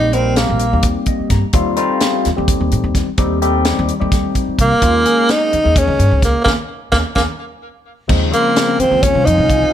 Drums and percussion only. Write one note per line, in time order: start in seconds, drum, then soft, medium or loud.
0.13 closed hi-hat soft
0.36 snare medium
0.36 closed hi-hat medium
0.59 closed hi-hat medium
0.82 kick medium
0.82 closed hi-hat medium
1.06 kick medium
1.06 closed hi-hat medium
1.30 kick medium
1.30 snare soft
1.30 closed hi-hat medium
1.53 kick medium
1.53 closed hi-hat medium
1.76 closed hi-hat medium
2.00 snare medium
2.00 closed hi-hat medium
2.25 snare soft
2.25 closed hi-hat medium
2.48 kick medium
2.48 closed hi-hat medium
2.71 closed hi-hat medium
2.95 kick medium
2.95 snare soft
2.95 closed hi-hat medium
3.17 kick medium
3.17 closed hi-hat medium
3.42 closed hi-hat medium
3.65 snare loud
3.65 closed hi-hat medium
3.88 closed hi-hat soft
4.12 kick medium
4.12 snare soft
4.12 closed hi-hat medium
4.35 kick medium
4.35 closed hi-hat soft
4.59 kick medium
4.59 closed hi-hat medium
4.82 kick medium
4.82 closed hi-hat medium
5.05 closed hi-hat medium
5.29 snare medium
5.29 closed hi-hat medium
5.53 closed hi-hat soft
5.76 kick loud
5.76 closed hi-hat medium
5.99 closed hi-hat medium
6.22 kick medium
6.22 snare soft
6.22 closed hi-hat medium
6.46 kick medium
6.46 snare medium
6.92 kick medium
6.92 snare medium
7.16 kick medium
7.16 snare medium
8.09 kick medium
8.09 crash medium
8.33 closed hi-hat soft
8.56 snare loud
8.56 closed hi-hat medium
8.80 closed hi-hat medium
9.03 kick medium
9.03 closed hi-hat medium
9.27 closed hi-hat medium
9.50 kick medium
9.50 closed hi-hat medium